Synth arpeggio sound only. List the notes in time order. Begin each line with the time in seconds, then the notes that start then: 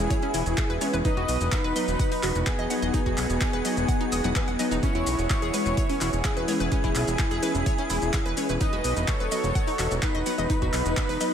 0.10 C#5
0.23 C#4
0.34 E4
0.58 G#4
0.70 B4
0.81 C#5
0.93 B4
1.05 D#4
1.17 F#4
1.64 B4
1.76 D#5
1.99 F#5
2.12 D#4
2.23 F#4
2.47 B4
2.59 D#5
2.70 F#5
2.82 D#5
2.94 D#4
3.06 F#4
3.53 B4
3.65 D#5
3.88 F#5
4.01 D#4
4.12 D#6
4.24 F#5
4.36 B4
4.48 F#5
4.59 D#5
4.71 D#4
4.83 C#4
4.95 E4
5.42 G#4
5.54 B4
5.77 C#5
5.89 C#4
6.01 E4
6.25 G#4
6.37 B4
6.48 C#5
6.60 B4
6.72 C#4
6.84 E4
7.31 G#4
7.43 B4
7.66 C#5
7.78 C#4
7.90 E4
8.14 G#4
8.26 B4
8.37 C#5
8.49 B4
8.61 D#4
8.73 F#4
9.20 B4
9.32 D#5
9.55 F#5
9.67 D#4
9.79 F#4
10.03 B4
10.15 D#5
10.26 F#5
10.38 D#5
10.50 D#4
10.62 F#4
11.09 B4
11.21 D#5